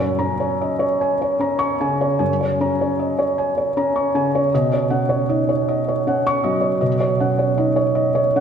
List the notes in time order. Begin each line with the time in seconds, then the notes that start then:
Already playing: F#2 G#5
0.00 C#5
0.19 C#4 A#5
0.40 C#5
0.61 D#5
0.79 C#5
1.01 G#5
1.22 C#5
1.40 C#4 A#5
1.59 C#6
1.80 C#3 G#5
2.01 C#5
2.19 F#2 G#5
2.41 C#5
2.60 C#4 A#5
2.81 C#5
2.99 D#5
3.19 C#5
3.38 G#5
3.57 C#5
3.77 C#4 A#5
3.96 C#6
4.14 C#3 G#5
4.35 C#5
4.54 B2 D#5
4.73 C#5
4.90 C#4 F#5
5.09 C#5
5.29 D#4 D#5
5.49 C#5
5.68 D#5
5.88 C#5
6.07 C#4 F#5
6.27 C#6
6.44 F#3 D#5
6.61 C#5
6.81 B2 D#5
7.00 C#5
7.20 C#4 F#5
7.39 C#5
7.58 D#4 D#5
7.76 C#5
7.95 D#5
8.15 C#5
8.36 C#4 F#5